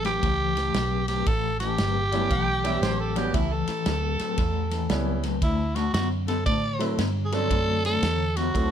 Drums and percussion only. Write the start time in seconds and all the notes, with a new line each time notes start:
0.04 snare, ride
0.23 kick, snare, ride
0.57 snare, ride
0.74 snare, ride
1.08 snare, ride
1.26 kick, ride
1.60 snare, ride
1.78 snare, ride
2.12 snare, ride
2.30 kick, snare, ride
2.64 snare, ride
2.83 snare, ride
3.16 snare, ride
3.34 kick, snare, ride
3.67 snare, ride
3.86 snare, ride
4.19 snare, ride
4.38 kick, snare, ride
4.71 snare, ride
4.89 snare, ride
5.23 snare, ride
5.42 kick, snare, ride
5.76 snare, ride
5.94 snare, ride
6.28 snare, ride
6.46 kick, ride
6.80 snare, ride
6.98 snare, ride
7.32 snare, ride
7.51 kick, ride
7.85 snare, ride
8.03 snare, ride
8.37 snare, ride
8.55 kick, snare, ride